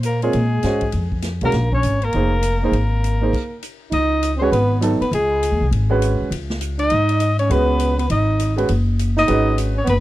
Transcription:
Already playing: A#2
0.03 A#3 A#4, hi-hat pedal, ride
0.22 G#3 C4 F4 G#4 A#4 C#5, ride
0.33 A#2, ride
0.63 G#2 C#4 F#4 C5 D#5, snare, hi-hat pedal, ride
0.81 kick, ride
0.92 F2, ride
1.12 kick
1.22 snare, hi-hat pedal, ride
1.41 B1 G#3 A#3 C#4 F#4 A#4, kick, ride
1.52 A#1, snare, ride
1.72 C#4 C#5, kick
1.83 G#1, hi-hat pedal, ride
2.02 A#3 A#4, ride
2.13 F1 A#3 D#4 G#4 C5, ride
2.42 hi-hat pedal, ride
2.63 A#3 D#4 G#4 A#4 C5
2.72 G#1, ride
3.04 hi-hat pedal, ride
3.21 A#3 D#4 G#4 C5
3.33 kick, crash, ride
3.62 hi-hat pedal, ride
3.91 C#2 D#4 D#5, ride
4.23 hi-hat pedal, ride
4.36 C4 C#4 C5
4.41 G#3 C#4 F#4 B4 C#5
4.52 G#1 B3 B4, ride
4.81 F#3 B3 D#4 A4, hi-hat pedal, ride
5.00 B3 B4, muted upright bass stroke, ride
5.11 C#2 G#3 G#4, ride
5.43 hi-hat pedal, ride
5.52 D#2
5.61 C2
5.71 G#1, ride
5.90 G#3 C#4 F#4 B4
6.02 hi-hat pedal, ride
6.21 muted upright bass stroke
6.31 C#2, ride
6.50 snare
6.61 hi-hat pedal, ride
6.79 D#4 D#5, ride
6.90 G#2, ride
7.09 ride
7.20 hi-hat pedal, ride
7.39 C#4 C#5, ride
7.50 C#2 G#3 B3 C#4 F#4 B4, ride
7.79 hi-hat pedal, ride
7.98 B3 B4, ride
8.10 G#1 D#4 D#5, ride
8.39 hi-hat pedal, ride
8.56 G#3 C#4 F#4 B4, ride
8.69 F#1, ride
8.99 hi-hat pedal, ride
9.17 D#4 D#5, snare
9.28 G#1 G#3 C#4 F#4 B4, ride
9.58 hi-hat pedal, ride
9.75 C#4 C#5
9.84 F#1 B3, ride
9.89 B4

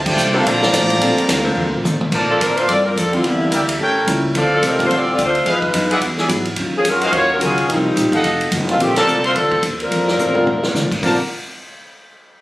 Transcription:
Already playing: D2
0.05 A3 D4 F4 G4 C5 D5 G5, kick, crash
0.16 C2 A#3 D4 A4 C5, hi-hat pedal
0.33 D3 A3 A#3 C4 D4 F4 G4 A4 A#4 C5 F5
0.44 A#1 D3 F3 A#3 D4 F4 A4 C5 D5 A#5, kick, ride
0.63 snare
0.72 A1 A#3 D4 A4 C5, kick, snare, hi-hat pedal, ride
0.90 ride
1.00 A#1 G3 A3 A#3 C4 D4 F4 A4 C5, kick, ride
1.17 muted upright bass stroke, ride
1.28 D2 A#3 D4 A4 C5, kick, snare, hi-hat pedal, ride
1.44 D3 A#3 C4 A#4
1.55 F2 A#3 D4 A4 C5, mid tom
1.64 D2
1.73 A#1
1.84 A2 A#3 D4 A4 C5, hi-hat pedal, mid tom
2.01 mid tom
2.11 A#2 A#3 D4 A4 A#4 C5 D5 A5, kick, crash
2.29 F3 C4 D4 A4
2.39 A2 F3 A#3 C4 D4 A4 A#4 C5, kick, hi-hat pedal, ride
2.57 A3 D4 F4 C5, ride
2.66 G2 A#3 C4 D4 F4 A4 C5 D5, kick, ride
2.85 F3 C4 D4 A#4
2.95 F2 F3 A#3 C4 D4 A4 C5, kick, hi-hat pedal, ride
3.12 D3 G3 A3 C4 D4 E4 F4, ride
3.22 E2 E3 A#3 D4 G4, kick, ride
3.26 G3 E4
3.51 D2 E3 A#3 D4 G4 A#4 D5 E5 G5, kick, hi-hat pedal, ride
3.69 ride
3.78 A1 A3 C#4 G4 A4 A#4 C#5 G5, kick
4.06 C#2 G3 A3 A#3 C#4 E4 G4 A#4, kick, hi-hat pedal, ride
4.33 D2 D3 A3 C4 F4 A4 C5 D5 F5, kick, ride
4.53 F3 C4 D4 A4
4.62 C2 D3 A3 C4 F4, kick, snare, hi-hat pedal, ride
4.66 G3 C4 D#4 A#4
4.78 D3 G3 C4 F4, kick, ride
4.85 A3 D4 F4 C5
4.90 A1 D3 A3 C4 F4, kick, ride
4.95 C4 F4 A4 D5
5.13 C4 F4 A4 D5
5.17 D2 D3 A3 C4 F4, kick, hi-hat pedal, ride
5.24 A3 D4 F4 C5
5.35 ride
5.45 F2 F3 B3 D#4 G#4 B4 D#5 F5, kick, ride
5.49 G#3 D#4 F4 B4
5.62 kick
5.73 F#2 F3 B3 D#4 G#4, kick, hi-hat pedal, ride
5.90 G#4 D5 E5 F#5, ride
6.00 E2 E3 D4 F#4 G#4, kick, ride
6.18 G#4 D5 E5 G#5, snare
6.28 G#2 E3 F#3 B3 D4 E4 F#4 G#4, kick, hi-hat pedal, ride
6.45 ride
6.56 D#2 D#3 F#3 C#4, kick, ride
6.60 F4
6.74 F3 A#3 C#4 G#4, muted upright bass stroke
6.84 F#2 D#3 F#3 C#4 F4 A#4, kick, hi-hat pedal, ride
6.88 F#3 C#4
7.01 F#4 C#5 D#5 F5, ride
7.05 G#3 C#4 F4 C5
7.12 D#2 D#3 F#3 C#4 F4, kick, ride
7.16 A#3 F4 F#4 C#5
7.33 F#3 C#4 F4 A#4
7.39 C#2 D#3 F#3 G#3 C#4 F4 F#4, kick, hi-hat pedal, ride
7.44 F#3 C#4 F4 G#4
7.58 ride
7.66 C2 C3 F3 G3 A#3 D#4 G4, kick, ride
7.72 G3 A#3 C4 D#4
7.94 A#1 C3 G3 A#3 D#4, kick, hi-hat pedal, ride
8.12 A4 D#5 F5 F#5, kick, ride
8.22 F1 F3 A3 D#4 F#4, kick, ride
8.41 ride
8.51 F#1 F3 A3 D#4 F#4, kick, hi-hat pedal, ride
8.69 A3 C4 D#4 F4, ride
8.78 A#1 D3 D#3 G3 A3 A#3 C4 D4 F4 G4 A4 C5, kick, ride
8.96 F3 C4 D4 A4 A#4 C5 D5 A5, snare, ride
9.06 C2 A#3 D4 A4 C5, hi-hat pedal
9.24 A3 D4 F4 A#4 C5 D5 C6, ride
9.34 D2 F3 A#3 C4 D4 A4 C5, kick, ride
9.52 kick
9.62 D#2 A#3 D4 A4 C5, kick, hi-hat pedal, ride
9.80 F3 C4 D4 A#4, ride
9.90 F2 A#3 D4 A4 C5, kick, ride
10.08 snare
10.18 A2 A#3 D4 A4 C5, floor tom, hi-hat pedal
10.34 D3 G3 C4 F4, floor tom
10.45 A#2 A#3 D4 A4, floor tom
10.50 C5
10.63 snare
10.74 D3 A#3 D4 A4 C5, snare, hi-hat pedal
10.84 A#2
10.92 A2, kick, crash
11.02 A#1 D3 F3 G3 A#3 C4 D4 F4 A4 A#4 C5 D5 A5, kick, open hi-hat

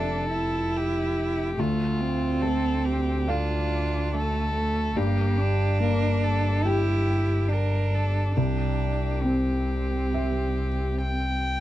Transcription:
Already playing: F1 F2 A3 D4 A4 E5
0.30 E4
0.76 G4
1.56 D2 A3
1.60 F4
2.01 C4
2.42 A3 A4
2.86 G4
3.28 D4 F4 A4 F5
4.13 A3 A4
4.54 A3
4.96 G1 G2 A#3 G4
5.37 D4
5.80 A#3 A#4
6.24 A4
6.63 E4 G4 G5
7.48 D4 A#4
7.95 A4
8.35 C2 D4 G4
9.23 C4
10.14 G4 E5
11.01 G5

